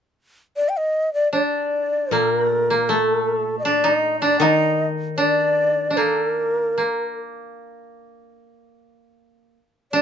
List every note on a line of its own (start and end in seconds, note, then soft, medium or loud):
0.56 0.70 D5 medium
0.69 0.79 G5 medium
0.78 1.13 D#5 medium
1.14 1.32 D5 medium
1.33 3.65 D4 soft
1.33 2.14 D5 medium
2.11 4.40 A#2 soft
2.11 2.44 A#3 soft
2.11 2.32 A4 medium
2.32 2.90 A#4 medium
2.44 2.70 A3 soft
2.70 2.95 A#3 soft
2.89 5.78 A3 medium
2.89 3.58 A4 medium
3.59 3.65 D#5 medium
3.63 3.90 D4 medium
3.63 3.86 D5 medium
3.84 4.28 D#4 medium
3.84 4.20 D#5 medium
4.20 4.47 D4 medium
4.20 4.39 D5 medium
4.39 6.77 D#3 soft
4.39 5.24 D#4 medium
4.39 4.87 D#5 medium
4.39 4.44 G5 medium
5.17 5.90 D4 medium
5.17 5.98 D5 medium
5.90 8.33 D4 soft
5.97 6.77 A#3 soft
5.97 6.26 A4 medium
6.26 7.18 A#4 medium
6.78 9.56 A#3 soft
9.92 10.02 D4 medium
9.92 10.02 D5 medium